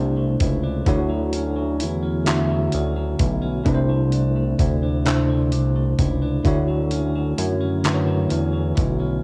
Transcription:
0.00 0.36 C2 loud
0.00 0.88 C3 medium
0.00 0.96 C3 medium
0.00 0.17 A3 medium
0.00 0.86 A3 medium
0.00 0.63 D4 medium
0.00 0.89 D4 medium
0.00 0.40 E4 medium
0.00 0.87 E4 medium
0.00 0.89 C5 medium
0.17 1.09 A3 medium
0.40 0.83 C#2 medium
0.40 1.12 E4 medium
0.40 kick medium
0.40 closed hi-hat medium
0.64 1.33 D4 medium
0.85 1.82 D2 loud
0.85 1.96 D3 medium
0.85 2.26 D3 medium
0.85 1.96 A3 medium
0.85 1.97 E4 medium
0.85 1.97 F#4 medium
0.85 1.98 C#5 medium
0.85 kick loud
0.85 closed hi-hat medium
1.09 1.55 F#3 medium
1.33 2.02 C#4 medium
1.33 closed hi-hat soft
1.56 2.48 F#3 medium
1.80 2.69 E2 medium
1.80 3.18 E4 medium
1.80 closed hi-hat medium
2.03 2.71 C#4 soft
2.24 3.35 D3 medium
2.24 4.62 D3 medium
2.24 3.36 A3 medium
2.24 3.36 E4 medium
2.24 3.37 F#4 medium
2.24 3.37 E5 medium
2.24 clap medium
2.24 closed hi-hat medium
2.50 2.95 F#3 medium
2.72 3.16 D2 medium
2.72 3.41 C#4 medium
2.72 closed hi-hat soft
2.96 3.75 F#3 medium
3.19 3.62 B1 medium
3.19 4.15 E4 medium
3.19 kick medium
3.19 closed hi-hat medium
3.42 3.75 C#4 medium
3.64 4.55 C2 loud
3.64 4.75 C3 medium
3.64 5.05 C3 medium
3.64 4.75 A3 medium
3.64 4.76 D4 medium
3.64 4.76 E4 medium
3.64 kick medium
3.64 closed hi-hat medium
3.68 3.73 B4 medium
3.74 4.80 C5 medium
3.89 4.35 A3 medium
4.12 4.82 D4 medium
4.12 closed hi-hat soft
4.36 5.29 A3 medium
4.59 5.55 D2 loud
4.59 5.99 E4 medium
4.59 kick medium
4.59 closed hi-hat medium
4.83 5.52 D4 soft
5.04 6.15 C3 medium
5.04 6.54 C3 medium
5.04 6.15 A3 medium
5.04 6.15 D4 medium
5.04 6.16 E4 medium
5.04 6.16 C5 medium
5.04 clap loud
5.04 closed hi-hat medium
5.30 5.75 A3 medium
5.52 5.95 C2 loud
5.52 6.22 D4 medium
5.52 closed hi-hat soft
5.76 6.68 A3 medium
5.99 6.41 C#2 medium
5.99 6.71 E4 medium
5.99 kick medium
5.99 closed hi-hat medium
6.22 6.91 D4 medium
6.44 7.34 D2 loud
6.44 7.54 D3 medium
6.44 7.84 D3 medium
6.44 7.55 A3 medium
6.44 7.55 E4 medium
6.44 7.55 F#4 medium
6.44 7.56 C#5 medium
6.44 kick medium
6.44 closed hi-hat medium
6.68 7.14 F#3 medium
6.91 7.59 C#4 medium
6.91 closed hi-hat medium
7.16 8.06 F#3 medium
7.38 8.27 F#2 medium
7.38 8.75 E4 medium
7.38 closed hi-hat medium
7.61 8.28 C#4 medium
7.84 8.94 D3 medium
7.84 9.23 D3 medium
7.84 8.94 A3 medium
7.84 8.95 E4 medium
7.84 8.95 F#4 medium
7.84 7.92 B4 medium
7.84 clap medium
7.84 closed hi-hat medium
7.94 8.99 C#5 medium
8.07 8.52 F#3 medium
8.30 8.73 E2 medium
8.30 8.99 C#4 medium
8.30 closed hi-hat soft
8.53 9.23 F#3 soft
8.75 9.20 B1 loud
8.75 9.23 E4 medium
8.75 kick medium
8.75 closed hi-hat medium
9.00 9.23 C#4 medium

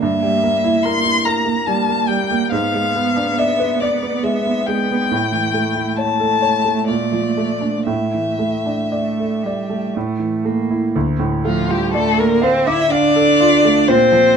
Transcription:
0.00 2.48 G2 medium
0.00 2.48 A#3 medium
0.00 0.85 E5 medium
0.23 0.55 G3 soft
0.43 0.76 A#3 soft
0.64 0.96 E4 medium
0.84 1.17 A#4 medium
0.84 1.26 C6 loud
1.04 1.38 E4 soft
1.25 1.59 A#4 medium
1.25 1.68 A#5 medium
1.45 1.79 A#3 soft
1.67 2.00 G3 medium
1.67 2.10 A5 medium
1.89 2.22 A#3 soft
2.08 2.43 G3 soft
2.08 2.51 G5 medium
2.31 2.52 A#3 medium
2.51 5.07 G#2 medium
2.51 5.06 B3 medium
2.51 3.40 F5 medium
2.74 3.08 G#3 soft
2.95 3.29 B3 soft
3.16 3.50 D4 soft
3.38 3.72 D5 medium
3.38 3.82 E5 medium
3.60 3.94 B4 soft
3.80 4.26 D5 medium
3.80 4.16 D5 medium
4.03 4.37 B3 soft
4.23 4.58 G#3 medium
4.23 4.68 E5 medium
4.46 4.80 B3 soft
4.67 5.02 G#3 medium
4.67 5.98 G5 medium
4.91 5.12 B3 soft
5.11 6.85 A2 medium
5.11 8.77 A3 medium
5.32 5.67 E3 soft
5.54 5.88 A3 soft
5.75 6.10 E4 soft
5.97 6.33 C#5 soft
5.97 6.87 A5 medium
6.20 6.56 A4 soft
6.42 6.79 C#5 soft
6.65 6.88 A3 soft
6.88 7.84 A#2 soft
6.88 7.85 D5 medium
7.13 7.52 F3 soft
7.37 7.77 A3 soft
7.61 7.87 D4 soft
7.87 9.91 A2 soft
7.87 9.91 E5 medium
8.14 8.55 E3 soft
8.39 8.81 A3 soft
8.66 9.07 D4 soft
8.90 9.45 A3 medium
8.90 9.34 D5 soft
9.19 9.60 A4 soft
9.43 9.96 G3 medium
9.43 9.86 D5 soft
9.70 9.95 A3 soft
9.94 10.93 A2 soft
9.94 10.47 A3 medium
10.19 10.60 E3 soft
10.45 10.85 A3 soft
10.45 10.95 A#3 medium
10.71 10.95 E4 soft
10.96 13.85 D2 medium
11.19 11.60 A2 medium
11.44 11.70 F3 medium
11.44 11.85 A3 soft
11.44 11.72 F4 medium
11.68 11.97 G3 medium
11.68 12.09 F4 medium
11.68 11.93 G4 medium
11.94 12.21 A3 medium
11.94 12.21 A4 medium
11.94 12.34 D5 medium
12.18 12.44 A#3 medium
12.18 12.58 A4 soft
12.18 12.45 A#4 medium
12.42 12.68 C4 medium
12.42 12.67 C5 medium
12.42 12.82 F5 medium
12.67 12.91 E4 medium
12.67 12.92 E5 loud
12.67 13.07 D6 medium
12.91 13.91 D4 medium
12.91 13.90 D5 loud
12.91 13.31 F5 medium
13.16 13.55 A4 medium
13.40 13.79 F4 medium
13.65 13.89 A3 medium
13.88 14.37 A#2 medium
13.88 14.37 C4 medium
13.88 14.37 C5 loud
14.12 14.37 F3 medium

